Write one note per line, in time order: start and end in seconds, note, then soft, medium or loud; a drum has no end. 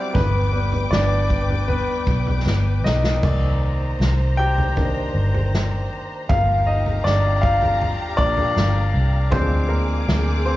0.00 0.17 F#3 medium
0.00 0.13 G3 medium
0.00 0.17 C4 medium
0.00 0.17 E4 medium
0.00 0.16 G4 medium
0.00 0.17 C5 loud
0.00 0.11 D5 medium
0.00 0.12 F#5 medium
0.00 3.19 D6 medium
0.14 0.88 G1 loud
0.14 0.51 B3 medium
0.14 0.50 B4 medium
0.14 3.20 B4 medium
0.14 3.20 G5 medium
0.14 kick loud
0.14 floor tom loud
0.52 3.19 G3 soft
0.52 0.63 B3 medium
0.52 0.61 B4 medium
0.72 floor tom medium
0.91 1.84 G1 loud
0.91 1.65 D4 medium
0.91 1.70 D5 medium
0.91 snare loud
1.30 kick medium
1.49 floor tom medium
1.68 2.82 B3 medium
1.68 2.80 B4 medium
1.68 floor tom medium
2.07 2.43 B1 medium
2.07 kick medium
2.27 floor tom medium
2.46 2.84 G1 medium
2.46 snare medium
2.84 3.20 B1 medium
2.84 4.36 D#4 medium
2.84 4.35 D#5 medium
2.84 snare medium
3.04 snare medium
3.23 3.97 C2 medium
3.23 4.35 D#3 medium
3.23 4.35 A#3 medium
3.23 6.26 C5 medium
3.23 4.36 D5 medium
3.23 6.26 A#5 medium
3.23 kick loud
3.23 floor tom loud
3.23 crash medium
4.00 5.11 C2 loud
4.00 snare loud
4.37 6.25 G4 medium
4.37 6.24 G5 loud
4.58 floor tom medium
4.77 5.11 D#3 soft
4.77 5.12 A#3 soft
4.77 5.12 D4 medium
4.77 kick medium
4.77 floor tom medium
5.15 5.87 G1 medium
5.34 floor tom medium
5.55 snare loud
6.28 7.01 G1 medium
6.28 8.15 F3 medium
6.28 8.16 A#3 medium
6.28 6.65 F4 medium
6.28 9.29 G4 medium
6.28 10.57 F5 medium
6.28 6.68 F5 loud
6.28 9.29 A#5 medium
6.28 kick loud
6.28 floor tom loud
6.67 7.03 D#4 medium
6.67 7.02 D#5 medium
6.86 floor tom medium
7.04 7.95 G1 loud
7.04 7.13 D4 medium
7.04 7.13 D5 loud
7.04 snare loud
7.42 8.15 F4 medium
7.42 8.14 F5 loud
7.42 kick medium
7.62 floor tom medium
7.81 floor tom medium
8.17 8.54 A#1 medium
8.17 8.52 F3 medium
8.17 8.52 A#3 soft
8.17 9.28 D4 medium
8.17 9.35 D5 loud
8.17 kick medium
8.37 floor tom medium
8.56 8.92 G1 medium
8.56 snare loud
8.94 9.30 C2 medium
9.31 10.04 D2 loud
9.31 10.57 F3 medium
9.31 10.57 G#3 medium
9.31 9.68 C4 medium
9.31 10.57 D4 medium
9.31 10.57 G#4 medium
9.31 9.67 C5 loud
9.31 10.57 D6 medium
9.31 kick loud
9.31 floor tom loud
9.69 10.42 A#3 medium
9.69 10.48 A#4 medium
10.08 10.57 D2 medium
10.08 snare loud
10.45 10.57 C4 medium
10.45 10.57 C5 medium